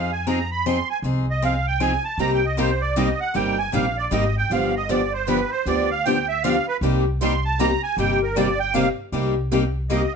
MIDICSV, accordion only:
0, 0, Header, 1, 2, 480
1, 0, Start_track
1, 0, Key_signature, -3, "minor"
1, 0, Tempo, 385109
1, 1291, Time_signature, 3, 2, 24, 8
1, 12661, End_track
2, 0, Start_track
2, 0, Title_t, "Accordion"
2, 0, Program_c, 0, 21
2, 0, Note_on_c, 0, 77, 75
2, 147, Note_off_c, 0, 77, 0
2, 156, Note_on_c, 0, 80, 86
2, 330, Note_off_c, 0, 80, 0
2, 341, Note_on_c, 0, 82, 80
2, 622, Note_off_c, 0, 82, 0
2, 642, Note_on_c, 0, 83, 88
2, 814, Note_off_c, 0, 83, 0
2, 825, Note_on_c, 0, 84, 91
2, 1105, Note_off_c, 0, 84, 0
2, 1125, Note_on_c, 0, 80, 87
2, 1231, Note_off_c, 0, 80, 0
2, 1626, Note_on_c, 0, 75, 84
2, 1787, Note_off_c, 0, 75, 0
2, 1799, Note_on_c, 0, 77, 83
2, 2072, Note_off_c, 0, 77, 0
2, 2084, Note_on_c, 0, 79, 91
2, 2255, Note_off_c, 0, 79, 0
2, 2261, Note_on_c, 0, 80, 90
2, 2543, Note_off_c, 0, 80, 0
2, 2545, Note_on_c, 0, 81, 95
2, 2726, Note_off_c, 0, 81, 0
2, 2742, Note_on_c, 0, 82, 99
2, 2893, Note_off_c, 0, 82, 0
2, 2920, Note_on_c, 0, 79, 82
2, 3062, Note_on_c, 0, 75, 79
2, 3063, Note_off_c, 0, 79, 0
2, 3213, Note_off_c, 0, 75, 0
2, 3227, Note_on_c, 0, 72, 83
2, 3504, Note_on_c, 0, 74, 83
2, 3507, Note_off_c, 0, 72, 0
2, 3686, Note_off_c, 0, 74, 0
2, 3697, Note_on_c, 0, 75, 75
2, 3982, Note_off_c, 0, 75, 0
2, 3992, Note_on_c, 0, 78, 95
2, 4171, Note_off_c, 0, 78, 0
2, 4185, Note_on_c, 0, 79, 83
2, 4466, Note_off_c, 0, 79, 0
2, 4472, Note_on_c, 0, 80, 99
2, 4651, Note_off_c, 0, 80, 0
2, 4666, Note_on_c, 0, 77, 79
2, 4947, Note_off_c, 0, 77, 0
2, 4958, Note_on_c, 0, 74, 83
2, 5134, Note_off_c, 0, 74, 0
2, 5148, Note_on_c, 0, 75, 76
2, 5428, Note_off_c, 0, 75, 0
2, 5455, Note_on_c, 0, 79, 100
2, 5622, Note_off_c, 0, 79, 0
2, 5641, Note_on_c, 0, 77, 75
2, 5915, Note_off_c, 0, 77, 0
2, 5935, Note_on_c, 0, 75, 86
2, 6103, Note_off_c, 0, 75, 0
2, 6115, Note_on_c, 0, 74, 78
2, 6392, Note_off_c, 0, 74, 0
2, 6401, Note_on_c, 0, 72, 83
2, 6575, Note_off_c, 0, 72, 0
2, 6575, Note_on_c, 0, 71, 76
2, 6861, Note_off_c, 0, 71, 0
2, 6871, Note_on_c, 0, 72, 87
2, 7051, Note_off_c, 0, 72, 0
2, 7079, Note_on_c, 0, 74, 84
2, 7354, Note_off_c, 0, 74, 0
2, 7361, Note_on_c, 0, 77, 88
2, 7535, Note_off_c, 0, 77, 0
2, 7539, Note_on_c, 0, 79, 102
2, 7823, Note_off_c, 0, 79, 0
2, 7836, Note_on_c, 0, 76, 96
2, 8013, Note_off_c, 0, 76, 0
2, 8016, Note_on_c, 0, 77, 96
2, 8302, Note_off_c, 0, 77, 0
2, 8330, Note_on_c, 0, 71, 100
2, 8435, Note_off_c, 0, 71, 0
2, 8994, Note_on_c, 0, 84, 87
2, 9270, Note_off_c, 0, 84, 0
2, 9289, Note_on_c, 0, 81, 96
2, 9459, Note_off_c, 0, 81, 0
2, 9466, Note_on_c, 0, 82, 99
2, 9746, Note_off_c, 0, 82, 0
2, 9763, Note_on_c, 0, 80, 95
2, 9936, Note_off_c, 0, 80, 0
2, 9960, Note_on_c, 0, 79, 90
2, 10233, Note_off_c, 0, 79, 0
2, 10257, Note_on_c, 0, 70, 67
2, 10423, Note_off_c, 0, 70, 0
2, 10426, Note_on_c, 0, 74, 79
2, 10706, Note_off_c, 0, 74, 0
2, 10718, Note_on_c, 0, 79, 111
2, 10892, Note_off_c, 0, 79, 0
2, 10901, Note_on_c, 0, 77, 89
2, 11075, Note_off_c, 0, 77, 0
2, 12340, Note_on_c, 0, 75, 64
2, 12621, Note_off_c, 0, 75, 0
2, 12661, End_track
0, 0, End_of_file